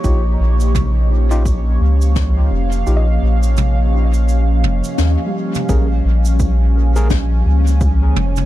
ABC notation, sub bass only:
X:1
M:4/4
L:1/8
Q:"Swing 16ths" 1/4=85
K:Bbdor
V:1 name="Sub bass" clef=bass
B,,, B,,,4 D,,2 F,,, | B,,, B,,,4 F,,, E,, z | B,,, B,,,4 D,,2 F,,, |]